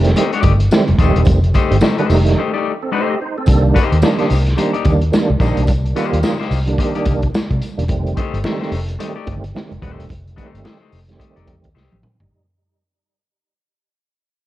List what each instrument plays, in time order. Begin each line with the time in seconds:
Already playing: fingered electric bass F1, tonewheel organ D#3 G3 A3 C4
0.04 snare, closed hi-hat
0.16 clean electric guitar A3 D#4 G4 C5, closed hi-hat, muted conga
0.33 clean electric guitar A3 D#4 G4 D5, closed hi-hat
0.43 fingered electric bass G1, kick, closed hi-hat, muted conga, low conga
0.60 closed hi-hat
0.71 tonewheel organ D#3 G3 A3 C4, snare, tambourine, high conga
0.88 fingered electric bass F1, closed hi-hat, high conga
0.98 fingered electric bass D#1, tonewheel organ D#3 G3 A3 C4, clean electric guitar A3 D#4 G4 C5, kick, closed hi-hat, tambourine
1.16 fingered electric bass E1, closed hi-hat
1.25 fingered electric bass F1, kick, closed hi-hat, tambourine, muted conga
1.44 closed hi-hat
1.54 clean electric guitar A3 D#4 G4 C5, kick, closed hi-hat, tambourine, muted conga
1.71 fingered electric bass G1, tonewheel organ D#3 G3 A3 C4, closed hi-hat
1.81 tonewheel organ D#3 G3 A3 C4, clean electric guitar A3 D#4 G4 C5, snare, tambourine, high conga
1.98 tonewheel organ D#3 G3 A3 D4, clean electric guitar A3 D#4 G4 C5, closed hi-hat
2.09 fingered electric bass F1, tonewheel organ D#3 G3 A3 D#4, open hi-hat, tambourine
2.26 snare, closed hi-hat
2.38 clean electric guitar A3 D#4 G4 C5
2.53 clean electric guitar A3 D#4 G4 D5
2.82 tonewheel organ C4 A4
2.92 clean electric guitar A3 D#4 G4 C5, tonewheel organ D#4 C5
3.09 tonewheel organ G4 D#5
3.21 tonewheel organ D#4 C5
3.37 tonewheel organ C4 A4
3.46 fingered electric bass C2, tonewheel organ D#3 G3 A#3 D4, kick, closed hi-hat, tambourine, muted conga
3.74 clean electric guitar A#3 D#4 G4 C5, kick, closed hi-hat, tambourine
3.92 fingered electric bass D#2, closed hi-hat
4.02 tonewheel organ D#3 G3 A#3 D4, clean electric guitar A#3 D#4 G4 C5, snare, tambourine, high conga
4.18 clean electric guitar A#3 D#4 G4 C5, snare, closed hi-hat
4.30 fingered electric bass C2, open hi-hat, tambourine
4.46 snare, closed hi-hat
4.57 tonewheel organ D#3 G3 A#3 D4, clean electric guitar A#3 D#4 G4 C5, closed hi-hat, tambourine, muted conga
4.73 clean electric guitar A#3 D#4 G4 D5, closed hi-hat
4.85 fingered electric bass D#2, tonewheel organ D#3 G3 A#3 D4, kick, closed hi-hat, tambourine, muted conga, low conga
5.01 closed hi-hat
5.12 tonewheel organ D#3 G3 A#3 D4, snare, tambourine, high conga
5.30 fingered electric bass C2, high conga
5.40 fingered electric bass A#1, tonewheel organ D#3 G3 A#3 D4, clean electric guitar A#3 D#4 G4 C5, kick, closed hi-hat, tambourine
5.57 fingered electric bass B1, closed hi-hat
5.67 fingered electric bass C2, kick, closed hi-hat, tambourine, muted conga
5.85 closed hi-hat
5.95 tonewheel organ D#3 G3 A#3 F4, clean electric guitar A#3 D#4 G4 C5, closed hi-hat, tambourine
6.13 fingered electric bass D#2, closed hi-hat
6.23 clean electric guitar A#3 D#4 G4 C5, snare, tambourine, high conga
6.39 clean electric guitar A#3 D#4 G4 C5, snare
6.51 fingered electric bass C2, open hi-hat, tambourine
6.67 tonewheel organ D3 G3 A#3 D4, closed hi-hat
6.73 tonewheel organ D#3
6.78 clean electric guitar A#3 D#4 G4 C5, kick, closed hi-hat, muted conga
6.95 clean electric guitar A#3 D#4 G4 D5, closed hi-hat
7.06 fingered electric bass C2, kick, closed hi-hat, tambourine, muted conga, low conga
7.22 kick, closed hi-hat
7.35 snare, tambourine, high conga
7.51 fingered electric bass C3, kick, closed hi-hat, high conga
7.62 closed hi-hat, tambourine
7.77 fingered electric bass E1, tonewheel organ D#3 G3 A#3 D4, closed hi-hat
7.88 fingered electric bass F1, tonewheel organ D#3 G3 A3 C4, kick, closed hi-hat, muted conga
8.07 closed hi-hat
8.17 clean electric guitar A3 D#4 G4 C5, kick, closed hi-hat, muted conga
8.33 fingered electric bass G1, closed hi-hat
8.44 tonewheel organ D#3 G3 A3 C4, clean electric guitar A3 D#4 G4 C5, snare, high conga
8.61 clean electric guitar A3 D#4 G4 C5, snare
8.72 fingered electric bass F1, open hi-hat
8.88 closed hi-hat
8.99 tonewheel organ D#3 G3 A3 C4, clean electric guitar A3 D#4 G4 C5, closed hi-hat, muted conga
9.16 clean electric guitar A3 D#4 G4 D5
9.26 fingered electric bass G1, tonewheel organ D#3 G3 A3 C4, kick, closed hi-hat, muted conga, low conga
9.44 closed hi-hat
9.54 tonewheel organ D#3 G3 A3 C4, snare, high conga
9.71 fingered electric bass F1, closed hi-hat, high conga
9.82 fingered electric bass D#1, tonewheel organ D#3 G3 A3 C4, clean electric guitar A3 D#4 G4 C5, kick, closed hi-hat
9.99 fingered electric bass E1, closed hi-hat
10.09 fingered electric bass F1, kick, closed hi-hat, muted conga
10.27 closed hi-hat
10.36 tonewheel organ D#3 G3 A3 C4, clean electric guitar A3 D#4 G4 C5, kick, closed hi-hat
10.54 fingered electric bass G1, closed hi-hat
10.64 clean electric guitar A3 D#4 G4 C5, snare, high conga
10.81 clean electric guitar A3 D#4 G4 C5
10.92 fingered electric bass F1, open hi-hat
11.08 tonewheel organ D#3 G3 A3 C4, snare, closed hi-hat
11.19 clean electric guitar A3 D#4 G4 C5, kick, closed hi-hat, muted conga
11.36 fingered electric bass F1, clean electric guitar A3 D#4 G4 D5, closed hi-hat
11.47 fingered electric bass F2, kick, closed hi-hat, muted conga, low conga
11.64 fingered electric bass D#2, kick, closed hi-hat
11.74 fingered electric bass C2, clean electric guitar A3 D#4 G4 C5, snare, high conga
11.92 fingered electric bass A1, tonewheel organ C3 A3, high tom, high conga
12.03 tonewheel organ D#3 C4, mid tom
12.20 fingered electric bass G1, tonewheel organ G3 D#4, floor tom